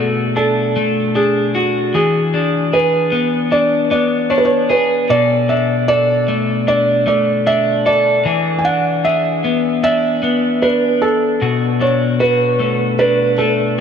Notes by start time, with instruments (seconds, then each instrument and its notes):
Already playing: clean electric guitar B2 A3 D4 F#4, felt piano A4
0.36 clean electric guitar D4, felt piano A4
0.76 clean electric guitar A3
1.15 clean electric guitar D4, felt piano G#4
1.55 clean electric guitar F#4, felt piano F#4
1.94 clean electric guitar E3 G#4, felt piano G#4
2.34 clean electric guitar D4
2.73 clean electric guitar G#4, felt piano B4
3.12 clean electric guitar B3
3.51 clean electric guitar D4, felt piano D5
3.91 clean electric guitar B3, felt piano D5
4.30 clean electric guitar D4, felt piano C#5
4.38 felt piano B4
4.45 felt piano C#5
4.70 clean electric guitar G#4, felt piano B4
5.10 clean electric guitar B2 A4, felt piano D5
5.49 clean electric guitar D4, felt piano E5
5.88 clean electric guitar A4, felt piano D5
6.28 clean electric guitar A3
6.67 clean electric guitar D4, felt piano D5
7.07 clean electric guitar A3, felt piano D5
7.47 clean electric guitar D4, felt piano E5
7.86 clean electric guitar A4, felt piano D5
8.25 clean electric guitar E3 G#4
8.59 felt piano G#5
8.65 clean electric guitar D4, felt piano F#5
9.05 clean electric guitar G#4, felt piano E5
9.44 clean electric guitar B3
9.83 clean electric guitar D4, felt piano E5
10.23 clean electric guitar B3
10.62 clean electric guitar D4, felt piano B4
11.02 felt piano A4
11.41 clean electric guitar B2 F#4
11.80 clean electric guitar D4, felt piano C#5
12.20 clean electric guitar F#4, felt piano B4
12.60 clean electric guitar A3
12.99 clean electric guitar D4, felt piano B4
13.38 clean electric guitar A3, felt piano A4